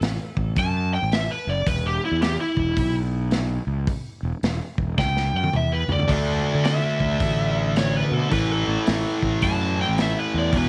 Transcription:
0.01 fingered electric bass A1, snare, open hi-hat
0.37 fingered electric bass A1, kick
0.56 fingered electric bass F#2, lead electric guitar A5, kick, open hi-hat
0.94 lead electric guitar G5
1.03 fingered electric bass A1
1.12 lead electric guitar E5, snare, open hi-hat
1.31 lead electric guitar B4
1.47 fingered electric bass F#1, lead electric guitar D5
1.67 fingered electric bass E1, lead electric guitar B4, kick, open hi-hat
1.87 lead electric guitar G4
2.05 lead electric guitar E4
2.11 fingered electric bass E2
2.22 lead electric guitar G4, snare, open hi-hat
2.41 lead electric guitar E4
2.57 fingered electric bass E1, kick
2.77 fingered electric bass B1, kick, open hi-hat
3.31 snare, open hi-hat
3.67 fingered electric bass C#2
3.87 kick, open hi-hat
4.23 fingered electric bass E1
4.43 fingered electric bass E1, snare, open hi-hat
4.78 fingered electric bass E1, kick
4.98 fingered electric bass C#2, lead electric guitar G5, kick, snare
5.17 snare
5.33 fingered electric bass F#2, lead electric guitar G5
5.44 high tom
5.53 fingered electric bass E2, lead electric guitar E5, mid tom
5.73 lead electric guitar B4
5.88 fingered electric bass D2, lead electric guitar D5, floor tom
5.99 floor tom
6.08 fingered electric bass D2, distorted electric guitar D3 A3 D4, kick, open hi-hat
6.55 fingered electric bass D3
6.65 lead electric guitar E5, snare, open hi-hat
7.00 fingered electric bass D2, kick
7.20 fingered electric bass A1, kick, open hi-hat
7.76 lead electric guitar C#5, snare, open hi-hat
7.96 lead electric guitar B4
8.11 fingered electric bass B2, lead electric guitar A4
8.30 fingered electric bass A1, distorted electric guitar A2 E3 A3, lead electric guitar B4, kick, open hi-hat
8.52 lead electric guitar A4
8.67 fingered electric bass A1
8.87 fingered electric bass A1, snare, open hi-hat
9.22 fingered electric bass A1, kick
9.42 fingered electric bass F#2, lead electric guitar A5, kick, open hi-hat
9.81 lead electric guitar G5
9.89 fingered electric bass A1
9.98 lead electric guitar E5, snare, open hi-hat
10.19 lead electric guitar B4
10.34 fingered electric bass E2
10.39 lead electric guitar D5
10.52 fingered electric bass E1, distorted electric guitar E2 B2 E3, kick, open hi-hat
10.57 lead electric guitar B4

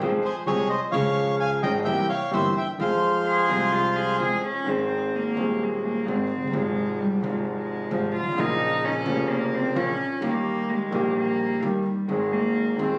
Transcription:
0.01 upright bass F2, grand piano F2 F3 G#3 C4 G#4
0.25 bandoneon G#4 C5
0.46 grand piano C2 C3 F3 G#3 C4 G#4, upright bass C2, bandoneon G#4 C#5
0.69 bandoneon C5 D#5
0.92 upright bass C#2, grand piano C#2 C#3 F3 G#3 C#4, bandoneon C#5 F5
0.96 grand piano G#4
1.40 bandoneon F5 G#5
1.63 grand piano G#1 G#2 F3 G#3 C#4 G#4, upright bass G#1, bandoneon D#5 G5
1.84 upright bass C2, grand piano C2 C3 E3 A#3 C4 G4, bandoneon E5 G5
2.09 bandoneon C#5 F5
2.31 grand piano G1 G2 E3 A#3 C4 G4, upright bass G1, bandoneon C5 E5
2.57 bandoneon E5 G5
2.78 upright bass F2, grand piano F2 F3 G#3 C4, bandoneon C5 F5
2.82 grand piano G#4
3.27 cello G#4
3.47 grand piano C2 C3 F3 G#3 C4 G#4, upright bass C2
3.72 cello F4
3.96 cello G#4
4.20 upright bass F2, grand piano F2 F3 G#3 C4 G#4, cello G#4
4.45 cello C#4
4.64 grand piano G#1 G#2 D#3 G#3 C4, upright bass G#1
4.68 cello C4, grand piano G#4
5.16 cello A#3
5.36 grand piano D#1 D#2 D#3 G#3 C4, upright bass D#2
5.40 grand piano G#4
5.63 cello G#3
5.85 cello A#3
6.06 grand piano G#1 G#2 D#3 G#3 C4 G#4, upright bass G#1, cello C4
6.36 grand piano F1, upright bass F1
6.42 grand piano F#1, upright bass F#1
6.47 upright bass G1, grand piano G1
6.52 upright bass G#1, grand piano G#1 G#2 C3 F3 G#3, cello G#3
6.56 grand piano F4
7.00 cello G3
7.21 grand piano G#1 G#2 C3 F3 G#3 F4, upright bass G#1
7.25 cello G#3
7.49 cello G#3
7.91 upright bass G#1, grand piano G#1 G#2 C3 F3 G#3 F4, cello F3
8.15 cello F4
8.21 grand piano G1, upright bass G1
8.26 grand piano G#1, upright bass G#1
8.32 upright bass A1, grand piano A1
8.37 upright bass A#1, grand piano A#1 A#2 C#3 F3 A#3 F4, cello D#4
8.85 cello C#4
9.05 upright bass F1, grand piano F1 F2 C#3 F3 A#3 F4
9.31 cello A#3
9.55 cello C4
9.76 grand piano A#1 A#2 C#3 F3 A#3 F4, upright bass A#1, cello C#4
10.21 upright bass D#2, grand piano D#2 D#3 G3 A#3 G4, cello A#3
10.70 cello G#3
10.91 upright bass A#1, grand piano A#1 A#2 D#3 G3 A#3 G4, cello A#3
11.17 cello A#3
11.62 grand piano D#2 D#3 G3 A#3 G4, upright bass D#2, cello G3
12.08 upright bass G#1, grand piano G#1 G#2 D#3 G#3 C4, cello G#3
12.12 grand piano G#4
12.32 cello A#3
12.77 grand piano D#1 D#2 D#3 G#3 C4, upright bass D#2, cello C4
12.82 grand piano G#4

